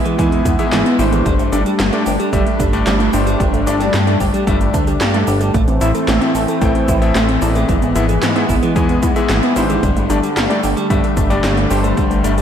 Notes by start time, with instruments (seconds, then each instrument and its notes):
Already playing: analog synth pad G#3 B3 E4, downlifter
0.05 clean electric guitar E3, synth arpeggio sound G#4, closed hi-hat, shaker
0.19 analog synth bass E2, electric grand piano G#2 B3 E4 G#4 G#5, clean electric guitar E3, synth arpeggio sound G#3, kick, closed hi-hat, shaker
0.32 synth arpeggio sound B3, closed hi-hat
0.45 analog synth bass E2, clean electric guitar B3, synth arpeggio sound E4, kick, closed hi-hat, shaker
0.59 electric grand piano G#2 B3 E4 G#4 E5, clean electric guitar E3, synth arpeggio sound G#4, closed hi-hat, shaker
0.72 analog synth bass G#1, clean electric guitar E3, synth arpeggio sound G#3, snare, clap, closed hi-hat, shaker
0.86 synth arpeggio sound B3, closed hi-hat
0.99 analog synth bass G#1, electric grand piano G2 A3 D4 G4 C5, clean electric guitar E4, synth arpeggio sound E4, open hi-hat, shaker
1.12 clean electric guitar E3, synth arpeggio sound G#4, closed hi-hat, shaker
1.26 analog synth bass G1, clean electric guitar G3, analog synth pad G3 A3 D4, synth arpeggio sound G3, kick, closed hi-hat, shaker
1.39 analog synth bass G1, synth arpeggio sound A3, closed hi-hat, shaker
1.52 analog synth bass G1, electric grand piano G2 A3 D4 G4 D5, clean electric guitar D4, synth arpeggio sound D4, closed hi-hat, shaker
1.66 clean electric guitar G3, synth arpeggio sound G4, closed hi-hat, shaker
1.79 analog synth bass G1, clean electric guitar G3, synth arpeggio sound G3, snare, clap, closed hi-hat, shaker
1.93 electric grand piano G2 A3 D4 G4 D5, synth arpeggio sound A3, closed hi-hat
2.06 analog synth bass G1, synth arpeggio sound D4, clean electric guitar G4, open hi-hat, shaker
2.19 clean electric guitar G3, synth arpeggio sound G4, closed hi-hat, shaker
2.33 analog synth bass G1, electric grand piano G2 A3 D4 G4 E5, clean electric guitar G3, synth arpeggio sound G3, kick, closed hi-hat, shaker
2.46 synth arpeggio sound A3, closed hi-hat
2.60 analog synth bass G1, synth arpeggio sound D4, clean electric guitar D4, kick, closed hi-hat, shaker
2.73 electric grand piano G2 A3 D4 G4 D5, clean electric guitar G3, synth arpeggio sound G4, closed hi-hat, shaker
2.86 analog synth bass G1, clean electric guitar G3, synth arpeggio sound G3, snare, clap, closed hi-hat, shaker
3.00 synth arpeggio sound A3, closed hi-hat
3.13 analog synth bass G1, electric grand piano G2 A3 D4 G4 C5, synth arpeggio sound D4, clean electric guitar G4, open hi-hat, shaker
3.27 clean electric guitar G3, synth arpeggio sound G4, closed hi-hat, shaker
3.40 analog synth bass G1, clean electric guitar G3, synth arpeggio sound G3, kick, closed hi-hat, shaker
3.53 analog synth bass G1, synth arpeggio sound A3, closed hi-hat, shaker
3.67 analog synth bass G1, electric grand piano G2 A3 D4 G4 D5, clean electric guitar D4, synth arpeggio sound D4, closed hi-hat, shaker
3.80 clean electric guitar G3, synth arpeggio sound G4, snare, closed hi-hat, shaker
3.93 analog synth bass G2, clean electric guitar G3, synth arpeggio sound G3, snare, clap, closed hi-hat, shaker
4.07 electric grand piano G2 A3 D4 G4 D5, synth arpeggio sound A3, closed hi-hat
4.20 analog synth bass G1, synth arpeggio sound D4, clean electric guitar G4, kick, open hi-hat, shaker
4.34 clean electric guitar G3, synth arpeggio sound G4, closed hi-hat, shaker
4.47 analog synth bass G1, electric grand piano G2 A3 D4 G4 E5, clean electric guitar G3, synth arpeggio sound G3, kick, closed hi-hat, shaker
4.61 synth arpeggio sound A3, closed hi-hat, shaker
4.74 analog synth bass D2, synth arpeggio sound D4, clean electric guitar D4, kick, closed hi-hat, shaker
4.87 clean electric guitar G3, synth arpeggio sound G4, closed hi-hat, shaker
5.01 analog synth bass G2, clean electric guitar G3, synth arpeggio sound G3, snare, clap, closed hi-hat, shaker
5.14 electric grand piano G2 A3 D4 G4 D5, synth arpeggio sound A3, closed hi-hat
5.27 analog synth bass G1, synth arpeggio sound D4, clean electric guitar G4, open hi-hat, shaker
5.41 clean electric guitar G3, synth arpeggio sound G4, closed hi-hat, shaker
5.54 analog synth bass A1, analog synth pad E3 A3 C4, synth arpeggio sound A3, clean electric guitar A3, kick, closed hi-hat, shaker
5.68 analog synth bass A1, synth arpeggio sound C4, closed hi-hat, shaker
5.81 analog synth bass A1, electric grand piano A2 C4 E4 A4 E5, synth arpeggio sound E4, clean electric guitar E4, closed hi-hat, shaker
5.94 clean electric guitar A3, synth arpeggio sound A4, closed hi-hat, shaker
6.08 analog synth bass A1, synth arpeggio sound A3, clean electric guitar A3, snare, clap, closed hi-hat, shaker
6.21 electric grand piano A2 C4 E4 A4 E5, synth arpeggio sound C4, closed hi-hat
6.35 analog synth bass A1, synth arpeggio sound E4, clean electric guitar A4, open hi-hat, shaker
6.48 clean electric guitar A3, synth arpeggio sound A4, closed hi-hat, shaker
6.61 analog synth bass A1, electric grand piano A2 C4 E4 A4 G5, clean electric guitar A3, synth arpeggio sound A3, kick, closed hi-hat, shaker
6.75 synth arpeggio sound C4, closed hi-hat
6.88 analog synth bass A1, synth arpeggio sound E4, clean electric guitar E4, kick, closed hi-hat, shaker
7.02 electric grand piano A2 C4 E4 A4 E5, clean electric guitar A3, synth arpeggio sound A4, closed hi-hat, shaker
7.15 analog synth bass A1, synth arpeggio sound A3, clean electric guitar A3, snare, clap, closed hi-hat, shaker
7.28 synth arpeggio sound C4, closed hi-hat
7.42 analog synth bass A1, electric grand piano G#2 B3 E4 G#4 D5, synth arpeggio sound E4, clean electric guitar A4, open hi-hat, shaker
7.55 clean electric guitar A3, synth arpeggio sound A4, closed hi-hat, shaker
7.68 analog synth bass G#1, clean electric guitar E3, analog synth pad G#3 B3, synth arpeggio sound G#3, kick, closed hi-hat, shaker
7.82 analog synth bass G#1, synth arpeggio sound B3, closed hi-hat, shaker
7.95 analog synth bass G#1, electric grand piano G#2 B3 E4 G#4 E5, clean electric guitar B3, synth arpeggio sound E4, closed hi-hat, shaker
8.09 clean electric guitar E3, synth arpeggio sound G#4, closed hi-hat, shaker
8.22 analog synth bass G#2, clean electric guitar E3, synth arpeggio sound G#3, snare, clap, closed hi-hat, shaker
8.35 electric grand piano G#2 B3 E4 G#4 E5, synth arpeggio sound B3, closed hi-hat
8.49 analog synth bass G#1, synth arpeggio sound E4, clean electric guitar E4, kick, open hi-hat, shaker
8.63 clean electric guitar E3, synth arpeggio sound G#4, closed hi-hat, shaker
8.76 analog synth bass E2, electric grand piano G#2 B3 E4 G#4 G#5, clean electric guitar E3, synth arpeggio sound G#3, kick, closed hi-hat, shaker
8.89 synth arpeggio sound B3, closed hi-hat
9.03 analog synth bass E2, clean electric guitar B3, synth arpeggio sound E4, kick, closed hi-hat, shaker
9.16 electric grand piano G#2 B3 E4 G#4 E5, clean electric guitar E3, synth arpeggio sound G#4, closed hi-hat, shaker
9.29 analog synth bass G#1, clean electric guitar E3, synth arpeggio sound G#3, snare, clap, closed hi-hat, shaker
9.43 synth arpeggio sound B3, closed hi-hat
9.56 analog synth bass G#1, electric grand piano G2 A3 D4 G4 C5, clean electric guitar E4, synth arpeggio sound E4, open hi-hat, shaker
9.69 clean electric guitar E3, synth arpeggio sound G#4, closed hi-hat, shaker
9.83 analog synth bass G1, analog synth pad D3 G3 A3, synth arpeggio sound G3, clean electric guitar G3, kick, closed hi-hat, shaker
9.96 analog synth bass G1, synth arpeggio sound A3, closed hi-hat, shaker
10.10 analog synth bass G1, electric grand piano G2 A3 D4 G4 D5, synth arpeggio sound D4, clean electric guitar D4, closed hi-hat, shaker
10.23 clean electric guitar G3, synth arpeggio sound G4, closed hi-hat, shaker
10.36 analog synth bass G1, clean electric guitar G3, synth arpeggio sound G3, snare, clap, closed hi-hat, shaker
10.50 electric grand piano G2 A3 D4 G4 D5, synth arpeggio sound A3, closed hi-hat
10.63 analog synth bass G1, synth arpeggio sound D4, clean electric guitar G4, open hi-hat, shaker
10.77 clean electric guitar G3, synth arpeggio sound G4, closed hi-hat, shaker
10.90 analog synth bass G1, electric grand piano G2 A3 D4 G4 E5, clean electric guitar G3, synth arpeggio sound G3, kick, closed hi-hat, shaker
11.04 synth arpeggio sound A3, closed hi-hat
11.17 analog synth bass G1, clean electric guitar D4, synth arpeggio sound D4, kick, closed hi-hat, shaker
11.30 electric grand piano G2 A3 D4 G4 D5, clean electric guitar G3, synth arpeggio sound G4, closed hi-hat, shaker
11.44 analog synth bass G1, clean electric guitar G3, synth arpeggio sound G3, snare, clap, closed hi-hat, shaker
11.57 synth arpeggio sound A3, closed hi-hat
11.70 analog synth bass G1, electric grand piano G2 A3 D4 G4 C5, synth arpeggio sound D4, clean electric guitar G4, open hi-hat, shaker
11.84 clean electric guitar G3, synth arpeggio sound G4, closed hi-hat, shaker
11.97 analog synth bass G1, clean electric guitar G3, synth arpeggio sound G3, kick, closed hi-hat, shaker
12.11 analog synth bass G1, synth arpeggio sound A3, closed hi-hat, shaker
12.24 analog synth bass G1, electric grand piano G2 A3 D4 G4 D5, clean electric guitar D4, synth arpeggio sound D4, closed hi-hat, shaker
12.38 clean electric guitar G3, synth arpeggio sound G4, closed hi-hat, shaker